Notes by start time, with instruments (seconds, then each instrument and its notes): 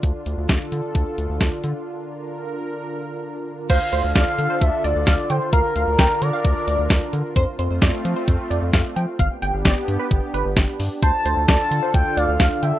Already playing: analog synth pad D3 D4 F4
0.03 analog synth bass D2, analog synth pad A4, kick, closed hi-hat
0.26 analog synth bass D2, closed hi-hat
0.38 analog synth bass D2
0.49 analog synth bass D2, kick, snare, closed hi-hat
0.72 analog synth bass D3, closed hi-hat
0.95 analog synth bass D2, kick, closed hi-hat
1.18 analog synth bass D2, closed hi-hat
1.29 analog synth bass D2
1.41 analog synth bass D2, kick, snare, closed hi-hat
1.64 analog synth bass D3, closed hi-hat
1.86 analog synth pad A#4
3.70 analog synth bass D2, analog synth pad D3 D4 F4 A4, analog polysynth C5, analog synth lead F5, kick, closed hi-hat, crash
3.93 analog synth bass D2, analog polysynth C5, closed hi-hat
4.04 analog synth bass D2
4.15 analog synth bass D2, analog polysynth D5, analog synth lead F5, kick, snare, closed hi-hat
4.38 analog synth bass D3, closed hi-hat
4.50 analog polysynth C5
4.61 analog synth bass D2, analog synth lead E5, kick, closed hi-hat
4.84 analog synth bass D2, analog synth lead D5, analog polysynth D5, closed hi-hat
4.96 analog synth bass D2
5.07 analog synth bass D2, analog polysynth F5, kick, snare, closed hi-hat
5.30 analog synth bass D3, analog synth lead C5, analog polysynth G5, closed hi-hat
5.53 analog synth bass D2, analog synth pad D4 A#4, analog synth lead A#4, analog polysynth F5, kick, closed hi-hat
5.76 analog synth bass D2, analog synth lead A#4, analog polysynth F5, closed hi-hat
5.87 analog synth bass D2
5.99 analog synth bass D2, analog polysynth G5, kick, snare, closed hi-hat
6.21 analog synth bass D3, analog synth lead D5, closed hi-hat
6.33 analog polysynth F5
6.45 analog synth bass D2, kick, closed hi-hat
6.67 analog synth bass D2, analog polysynth D5, closed hi-hat
6.79 analog synth bass D2
6.90 analog synth bass D2, kick, snare, closed hi-hat
7.13 analog synth bass D3, closed hi-hat
7.36 analog synth bass F2, analog synth pad A3 C4 F4, analog polysynth C5, kick, closed hi-hat
7.59 analog synth bass F2, analog polysynth C5, closed hi-hat
7.70 analog synth bass F2
7.82 analog synth bass F2, analog polysynth D5, kick, snare, closed hi-hat
8.05 analog synth bass F3, closed hi-hat
8.16 analog polysynth C5
8.28 analog synth bass F2, kick, closed hi-hat
8.51 analog synth bass F2, analog polysynth D5, closed hi-hat
8.62 analog synth bass F2
8.73 analog synth bass F2, analog polysynth F5, kick, snare, closed hi-hat
8.96 analog synth bass F3, analog polysynth G5, closed hi-hat
9.19 analog synth bass G1, analog synth pad B3 D4 G4, analog polysynth F5, kick, closed hi-hat
9.42 analog synth bass G1, analog polysynth G5, closed hi-hat
9.54 analog synth bass G1
9.65 analog synth bass G1, analog polysynth D5, kick, snare, closed hi-hat
9.88 analog synth bass G2, closed hi-hat
9.99 analog polysynth B4
10.11 analog synth bass G1, kick, closed hi-hat
10.34 analog synth bass G1, analog polysynth B4, closed hi-hat
10.45 analog synth bass G1
10.57 analog synth bass G1, kick, snare, closed hi-hat
10.80 analog synth bass G2, open hi-hat
11.02 analog synth bass D2, analog synth pad D3 F4 A4, analog polysynth C5, analog synth lead A5, kick, closed hi-hat
11.25 analog synth bass D2, analog polysynth C5, closed hi-hat
11.37 analog synth bass D2
11.48 analog synth bass D2, analog polysynth D5, analog synth lead A5, kick, snare, closed hi-hat
11.71 analog synth bass D3, closed hi-hat
11.83 analog polysynth C5
11.94 analog synth bass D2, analog synth lead G5, kick, closed hi-hat
12.17 analog synth bass D2, analog polysynth D5, analog synth lead F5, closed hi-hat
12.28 analog synth bass D2
12.40 analog synth bass D2, analog polysynth F5, kick, snare, closed hi-hat
12.63 analog synth bass D3, analog synth lead E5, analog polysynth G5, closed hi-hat